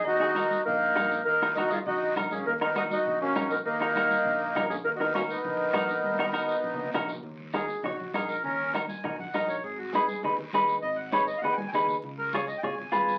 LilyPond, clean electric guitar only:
\new Staff \with { instrumentName = "Clean electric guitar" } { \time 4/4 \key ees \minor \tempo 4 = 200 r8 <ees' ges' aes'>8 <ees' ges' bes'>8 r4. <ees' ges' bes'>8 r8 | r8 <ees' ges' bes'>8 <ees' ges' bes'>8 r4. <ees' ges' bes'>8 r8 | r8 <ees' ges' bes'>8 <ees' ges' bes'>8 r4. <ees' ges' bes'>8 r8 | r8 <ees' ges' bes'>8 <ees' ges' bes'>8 r4. <ees' ges' bes'>8 r8 |
r8 <ees' ges' bes'>8 <ees' ges' bes'>8 r4. <ees' ges' bes'>8 r8 | r8 <ees' ges' bes'>8 <ees' ges' bes'>8 r4. <ees' ges' bes'>8 r8 | r4 <ees' ges' bes'>8 r8 <ees' ges' des''>8 r8 <ees' ges' bes'>8 r8 | r4 <ees' ges' bes'>8 r8 <ees' ges' bes'>8 r8 <ees' ges' bes'>8 r8 |
r4 <ees' aes' ces''>8 r8 <ees' aes' ces''>8 r8 <ees' aes' ces''>8 r8 | r4 <ees' aes' ces''>8 r8 <ees' aes' ces''>8 r8 <ees' aes' ces''>8 r8 | r4 <f' aes' des''>8 r8 <f' aes' des''>8 r8 <f' aes' ces''>8 r8 | }